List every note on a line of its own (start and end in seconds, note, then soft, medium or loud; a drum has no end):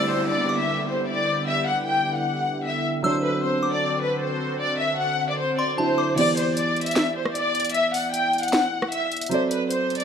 0.00 6.14 D3 medium
0.00 2.99 G3 medium
0.00 3.01 B3 medium
0.00 3.00 E4 medium
0.00 3.01 E4 medium
0.00 3.01 G4 medium
0.00 3.01 D5 medium
0.00 0.45 E6 medium
0.00 downlifter medium
0.10 0.26 C5 medium
0.30 0.57 D5 medium
0.49 1.04 D6 medium
0.59 0.87 E5 medium
0.88 1.04 C5 medium
1.08 1.45 D5 medium
1.47 1.63 E5 loud
1.67 1.83 F#5 medium
1.86 2.14 G5 medium
2.16 2.62 F#5 medium
2.65 2.81 E5 medium
3.02 5.74 F#3 medium
3.02 6.14 C4 medium
3.02 5.75 D4 medium
3.02 6.14 F#4 medium
3.02 6.14 A4 medium
3.02 3.20 C5 medium
3.02 3.59 E6 loud
3.07 5.76 C5 medium
3.24 3.39 B4 medium
3.43 3.71 C5 medium
3.63 4.18 D6 medium
3.73 4.00 D5 medium
4.02 4.18 B4 medium
4.22 4.58 C5 medium
4.61 4.77 D5 loud
4.61 swell medium
4.80 4.96 E5 medium
5.00 5.28 F#5 medium
5.29 5.37 D5 medium
5.39 5.55 C5 medium
5.59 5.75 D5 medium
5.59 5.77 C6 medium
5.77 6.17 F#3 soft
5.77 6.18 D4 soft
5.77 6.18 E4 medium
5.77 6.15 C5 medium
5.77 5.97 A5 medium
5.98 6.17 D6 medium
6.16 9.26 E3 medium
6.16 9.27 B3 medium
6.16 9.28 G4 medium
6.16 6.34 D5 loud
6.16 closed hi-hat medium
6.16 crash medium
6.20 9.29 D5 medium
6.37 6.53 C5 medium
6.37 closed hi-hat medium
6.57 6.84 D5 medium
6.57 closed hi-hat medium
6.76 closed hi-hat soft
6.81 closed hi-hat medium
6.86 7.14 E5 medium
6.86 closed hi-hat medium
6.91 closed hi-hat medium
6.96 snare loud
6.96 closed hi-hat medium
7.16 7.32 C5 medium
7.26 cross-stick medium
7.35 7.72 D5 loud
7.35 closed hi-hat medium
7.55 closed hi-hat soft
7.60 closed hi-hat medium
7.65 closed hi-hat medium
7.70 closed hi-hat medium
7.74 7.90 E5 loud
7.74 closed hi-hat medium
7.94 8.10 F#5 medium
7.94 open hi-hat medium
8.13 8.41 G5 medium
8.13 closed hi-hat medium
8.33 closed hi-hat soft
8.38 closed hi-hat medium
8.43 8.89 F#5 medium
8.43 closed hi-hat medium
8.48 closed hi-hat medium
8.53 snare loud
8.53 closed hi-hat medium
8.82 cross-stick medium
8.92 9.08 E5 medium
8.92 closed hi-hat medium
9.12 closed hi-hat soft
9.17 closed hi-hat medium
9.22 closed hi-hat medium
9.26 10.04 F#3 medium
9.26 closed hi-hat medium
9.31 10.04 C4 medium
9.31 10.04 A4 medium
9.31 9.47 C5 medium
9.31 10.04 D5 medium
9.31 closed hi-hat medium
9.51 9.67 B4 medium
9.51 closed hi-hat medium
9.71 9.98 C5 medium
9.71 closed hi-hat medium
9.90 closed hi-hat soft
9.95 closed hi-hat medium
10.00 10.04 D5 medium
10.00 closed hi-hat medium